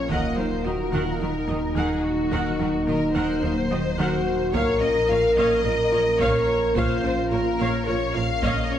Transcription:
Already playing: detuned saw bass A#1, violin section C#5
0.09 detuned saw bass D#1, double bass section D#2, synth arpeggio sound D#3, cello section D#3, ambient pad F#3 A#3 D#4 A#4, french horn section A#3, viola section A#4 F#5, violin section D#5, taiko
0.37 double bass section D#2, cello section D#3, synth arpeggio sound F#3, viola section D#4 A#4, violin section C5
0.65 double bass section D#2, cello section D#3, synth arpeggio sound A#3, viola section F#4 D#5, french horn section F#4, violin section A#4
0.92 double bass section D#2, synth arpeggio sound D#3, cello section D#3, viola section A#4 F#5, taiko
1.07 french horn section F4
1.20 double bass section D#2, cello section D#3, synth arpeggio sound D#4, french horn section D#4, viola section D#4 A#4
1.48 double bass section D#2, cello section D#3, synth arpeggio sound A#3, viola section F#4 D#5
1.75 double bass section D#2, synth arpeggio sound D#3, cello section D#3, violin section G#4, viola section A#4 F#5
2.03 violin section F#4
2.31 double bass section D#2, synth arpeggio sound D#3, cello section D#3, french horn section D#4, viola section A#4 F#5
2.59 double bass section D#2, cello section D#3, synth arpeggio sound F#3, viola section D#4 A#4
2.87 double bass section D#2, cello section D#3, synth arpeggio sound A#3, viola section F#4 D#5, violin section A#4
3.15 double bass section D#2, synth arpeggio sound D#3, cello section D#3, viola section A#4 F#5, violin section C5
3.43 double bass section D#2, cello section D#3, french horn section A#3, synth arpeggio sound D#4, viola section D#4 A#4
3.70 double bass section D#2, cello section D#3, synth arpeggio sound A#3, french horn section D#4, viola section F#4 D#5
3.98 double bass section D#2, cello section D#3, synth arpeggio sound D#3, french horn section F#4, viola section A#4 F#5
4.53 double bass section A#1, detuned saw bass A#1, cello section A#2, ambient pad F3 A#3 C#4 A#4, synth arpeggio sound A#3, french horn section A#4, viola section C#5 F5, violin section C#5, taiko
4.81 double bass section A#1, cello section A#2, synth arpeggio sound C#4, viola section F4 A#4, violin section D#5
5.09 double bass section A#1, cello section A#2, synth arpeggio sound F4, viola section A#4 C#5, violin section F5
5.37 double bass section A#1, cello section A#2, synth arpeggio sound A#3, viola section C#5 F5, violin section D#5
5.64 double bass section A#1, cello section A#2, viola section F4 A#4, french horn section A#4, synth arpeggio sound A#4
5.92 double bass section A#1, cello section A#2, synth arpeggio sound F4, viola section A#4 C#5
6.20 double bass section A#1, cello section A#2, synth arpeggio sound A#3, violin section C#5, viola section C#5 F5, taiko
6.75 double bass section A#1, cello section A#2, synth arpeggio sound A#3, french horn section F4, violin section C5, viola section C#5 F5, taiko
7.03 double bass section A#1, cello section A#2, synth arpeggio sound C#4, viola section F4 A#4
7.31 double bass section A#1, cello section A#2, synth arpeggio sound F4, viola section A#4 C#5, violin section A#4
7.59 double bass section A#1, cello section A#2, synth arpeggio sound A#3, viola section C#5 F5
7.87 double bass section A#1, cello section A#2, french horn section F4, viola section F4 A#4, synth arpeggio sound A#4, violin section C#5
8.14 double bass section A#1, cello section A#2, synth arpeggio sound F4, viola section A#4 C#5, violin section F5
8.42 double bass section A#1, cello section A#2, synth arpeggio sound A#3, viola section C#5 F5, violin section D#5, taiko
8.69 french horn section C#4, violin section C#5

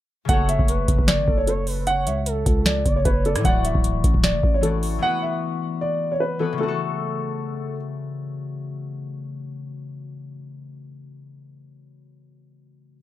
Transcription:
0.25 808-style bass F#1, harp C#3 A3, soft synth lead A4, grand piano F#5, kick, closed hi-hat
0.30 harp F#4 C#5
0.49 grand piano E5, closed hi-hat
0.59 808-style bass F#1, kick
0.68 soft synth lead B4, closed hi-hat
0.88 808-style bass F#1, kick, closed hi-hat
0.99 808-style bass F#1, kick
1.08 grand piano D5, snare, closed hi-hat
1.18 808-style bass G#1
1.28 808-style bass F#1, soft synth lead A4, kick
1.38 grand piano C#5
1.47 grand piano A4, soft synth lead C#5, closed hi-hat
1.67 soft synth lead B4, open hi-hat
1.87 soft synth lead C#5, grand piano F#5, closed hi-hat
2.07 808-style bass C#2, grand piano E5, closed hi-hat
2.26 soft synth lead A4, closed hi-hat
2.46 808-style bass C#2, kick, closed hi-hat
2.66 grand piano D5, snare, closed hi-hat
2.85 808-style bass F#1, soft synth lead D5, kick, closed hi-hat
2.96 grand piano C#5
3.05 808-style bass F#1, grand piano B4, soft synth lead C#5, kick, closed hi-hat
3.25 grand piano A4, soft synth lead D5, closed hi-hat
3.35 808-style bass A2, cross-stick, closed hi-hat
3.41 808-style bass D1, harp E3 A3, kick
3.45 harp F#4 D5, grand piano F#5, closed hi-hat
3.65 grand piano E5, closed hi-hat
3.75 808-style bass D1, kick
3.84 closed hi-hat
4.04 808-style bass A1, kick, closed hi-hat
4.14 808-style bass D1, kick
4.24 grand piano D5, snare, closed hi-hat
4.34 808-style bass F#1
4.43 808-style bass A1, kick
4.54 grand piano C#5
4.61 harp E3 A3 F#4 D5, grand piano A4, closed hi-hat
4.83 open hi-hat
4.99 harp E3 B3
5.03 harp F#4 B4, grand piano F#5
5.22 grand piano E5
5.81 grand piano D5
6.12 grand piano C#5
6.20 grand piano B4
6.39 harp E3 B3 F#4 B4, grand piano A4
6.53 harp C#3
6.58 harp A3, grand piano A4
6.63 harp F#4
6.68 harp A4

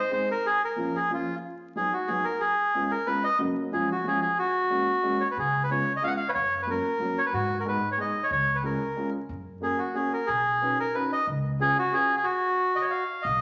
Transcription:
0.00 bandoneon C5
0.11 upright piano G#3 C4 D#4 G#4, bandoneon C5
0.31 bandoneon A#4
0.46 bandoneon G#4
0.64 bandoneon A#4
0.76 upright piano F3 A#3 C#4 F4
0.96 bandoneon G#4
1.10 upright piano F3 A#3 C#4 F4, bandoneon F4
1.75 upright piano F#3 B3 D#4 F#4, bandoneon G#4
1.93 bandoneon F#4
2.07 upright piano F#3 B3 D#4 F#4, bandoneon G#4
2.24 bandoneon A#4
2.40 bandoneon G#4
2.74 upright piano G#3 B3 C#4 F4
2.91 bandoneon A#4
3.06 upright piano G#3 B3 C#4 F4, bandoneon B4
3.24 bandoneon D#5
3.39 upright piano C#3 F#3 A#3 C#4 F#4
3.72 upright piano F3 G#3 C#4 F4, bandoneon G#4
3.91 bandoneon F#4
4.04 upright piano F3 G#3 C#4 F4, bandoneon G#4
4.22 bandoneon G#4
4.39 bandoneon F#4
4.70 upright piano G#3 A#3 C#4 F#4
5.03 upright piano G#3 A#3 C#4 F#4
5.20 bandoneon C#5
5.31 bandoneon B4
5.37 upright bass C#2, bandoneon G#4
5.63 bandoneon B4
5.70 upright piano G#3 B3 C#4 F4, bandoneon C#5
5.96 bandoneon D#5
6.02 upright piano G#3 B3 C#4 F4, bandoneon F5
6.07 bandoneon F#5
6.17 bandoneon F5
6.28 bandoneon B4 C#5
6.34 upright bass F#2, bandoneon C#5
6.62 bandoneon B4
6.67 upright piano F#3 A#3 C#4 F#4, bandoneon A#4
6.99 upright piano F#3 A#3 C#4 F#4
7.18 bandoneon C#5
7.26 bandoneon B4
7.33 upright bass G#2, bandoneon F#4
7.60 bandoneon A#4
7.65 upright piano G#3 B3 D#4 G#4, bandoneon B4
7.92 bandoneon C#5
7.97 upright piano G#3 B3 D#4 G#4, bandoneon D#5
8.23 bandoneon C#5
8.31 upright bass C#2, bandoneon C#5
8.55 bandoneon B4
8.63 upright piano G#3 C#4 F4 G#4, bandoneon A#4
8.96 upright piano G#3 C#4 F4 G#4
9.29 upright bass F#2
9.61 upright piano A#3 C#4 F#4 A#4, bandoneon G#4
9.78 bandoneon F#4
9.94 upright piano A#3 C#4 F#4 A#4, bandoneon G#4
10.13 bandoneon A#4
10.26 upright bass B1, bandoneon G#4
10.61 upright piano C#4 D#4 F#4 B4
10.80 bandoneon A#4
10.95 upright piano C#4 D#4 F#4 B4, bandoneon B4
11.12 bandoneon D#5
11.27 upright bass C#2
11.59 upright piano C#4 F4 G#4 B4, bandoneon G#4
11.78 bandoneon F#4
11.92 upright piano C#4 F4 G#4 B4, bandoneon G#4
12.17 bandoneon G#4
12.23 bandoneon F#4
12.76 bandoneon D#5
12.82 bandoneon C#5
12.90 bandoneon F5
13.22 upright bass B1, bandoneon D#5

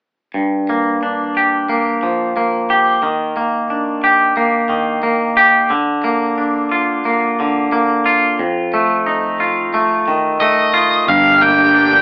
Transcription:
0.34 clean electric guitar G2
0.69 clean electric guitar A#3
1.03 clean electric guitar D4
1.37 clean electric guitar G4
1.69 clean electric guitar A#3
2.03 clean electric guitar F3
2.37 clean electric guitar A#3
2.70 clean electric guitar G4
3.03 clean electric guitar D#3
3.37 clean electric guitar A#3
3.70 clean electric guitar D4
4.04 clean electric guitar G4
4.37 clean electric guitar A#3
4.69 clean electric guitar D#3
5.03 clean electric guitar A#3
5.37 clean electric guitar G4
5.70 clean electric guitar D3
6.04 clean electric guitar A#3
6.38 clean electric guitar D4
6.72 clean electric guitar F4
7.05 clean electric guitar A#3
7.40 clean electric guitar D3
7.72 clean electric guitar A#3
8.06 clean electric guitar F4
8.39 clean electric guitar F2
8.74 clean electric guitar A3
9.06 clean electric guitar D#4
9.40 clean electric guitar F4
9.74 clean electric guitar A3
10.08 clean electric guitar D#3
10.40 clean electric guitar A3, lead electric guitar D#5
10.74 clean electric guitar F4
11.06 fingered electric bass G1, clean electric guitar G2, string section F3 A#3 D4 G4, lead electric guitar F5
11.41 clean electric guitar A#3, lead electric guitar G5
11.74 clean electric guitar D4

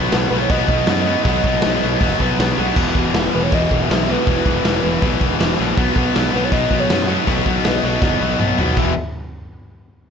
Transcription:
Already playing: distorted electric guitar B2 F#3 B3
0.11 picked electric bass B1, distorted electric guitar B2 F#3 B3, snare, open hi-hat
0.30 picked electric bass B1, distorted electric guitar B2 F#3 B3, soft synth lead B4
0.40 soft synth lead C#5
0.50 picked electric bass B1, distorted electric guitar B2 F#3 B3, soft synth lead D#5, kick, open hi-hat
0.68 picked electric bass B1, distorted electric guitar B2 F#3 B3, kick
0.87 picked electric bass F#2, distorted electric guitar B2 F#3 B3, snare, open hi-hat
1.05 distorted electric guitar B2 F#3 B3, soft synth lead D#5
1.25 picked electric bass B1, distorted electric guitar B2 F#3 B3, kick, open hi-hat
1.44 picked electric bass B1, distorted electric guitar B2 F#3 B3, kick
1.62 picked electric bass B1, distorted electric guitar B2 F#3 B3, snare, open hi-hat
1.83 picked electric bass B1, distorted electric guitar B2 F#3 B3
2.01 picked electric bass F#1, distorted electric guitar B2 F#3 B3, kick, open hi-hat
2.20 picked electric bass B1, distorted electric guitar B2 F#3 B3, kick
2.38 picked electric bass B1, distorted electric guitar B2 F#3 B3, snare, open hi-hat
2.58 picked electric bass B1, distorted electric guitar B2 F#3 B3
2.76 picked electric bass E1, distorted electric guitar E2 B2 E3, kick, crash
2.95 picked electric bass E1, distorted electric guitar E2 B2 E3, kick
3.14 picked electric bass E1, distorted electric guitar E2 B2 E3, snare, open hi-hat
3.33 picked electric bass E1, distorted electric guitar E2 B2 E3, soft synth lead B4
3.43 soft synth lead C#5
3.52 picked electric bass E1, distorted electric guitar E2 B2 E3, soft synth lead D#5, kick, open hi-hat
3.71 picked electric bass E1, distorted electric guitar E2 B2 E3, kick
3.82 soft synth lead E5
3.90 picked electric bass B1, distorted electric guitar E2 B2 E3, snare, open hi-hat
4.09 distorted electric guitar E2 B2 E3, soft synth lead B4
4.27 picked electric bass E1, distorted electric guitar E2 B2 E3, kick, open hi-hat
4.45 picked electric bass E1, distorted electric guitar E2 B2 E3, kick
4.64 picked electric bass E1, distorted electric guitar E2 B2 E3, snare, open hi-hat
4.83 picked electric bass E1, distorted electric guitar E2 B2 E3
5.01 picked electric bass B1, distorted electric guitar E2 B2 E3, kick, open hi-hat
5.19 picked electric bass E1, distorted electric guitar E2 B2 E3, kick
5.39 picked electric bass E1, distorted electric guitar E2 B2 E3, snare, open hi-hat
5.58 picked electric bass A#1, distorted electric guitar E2 B2 E3
5.77 picked electric bass B1, distorted electric guitar B2 F#3 B3, kick, open hi-hat
5.96 picked electric bass B1, distorted electric guitar B2 F#3 B3, kick
6.15 picked electric bass B1, distorted electric guitar B2 F#3 B3, snare, open hi-hat
6.33 picked electric bass B1, distorted electric guitar B2 F#3 B3, soft synth lead B4
6.45 soft synth lead C#5
6.51 picked electric bass B1, distorted electric guitar B2 F#3 B3, soft synth lead D#5, kick, open hi-hat
6.70 picked electric bass B1, distorted electric guitar B2 F#3 B3, kick
6.80 soft synth lead C#5
6.90 picked electric bass F#2, distorted electric guitar B2 F#3 B3, snare, open hi-hat
7.08 distorted electric guitar B2 F#3 B3, soft synth lead D#5
7.26 picked electric bass B1, distorted electric guitar B2 F#3 B3, kick, open hi-hat
7.45 picked electric bass B1, distorted electric guitar B2 F#3 B3, kick
7.63 picked electric bass B1, distorted electric guitar B2 F#3 B3, snare, open hi-hat
7.83 picked electric bass B1, distorted electric guitar B2 F#3 B3
8.02 picked electric bass F#1, distorted electric guitar B2 F#3 B3, kick, snare
8.21 picked electric bass B1, distorted electric guitar B2 F#3 B3
8.39 picked electric bass B1, distorted electric guitar B2 F#3 B3, mid tom
8.58 picked electric bass B1, distorted electric guitar B2 F#3 B3, floor tom
8.77 picked electric bass E1, distorted electric guitar E2 B2 E3, soft synth lead E5, kick, crash

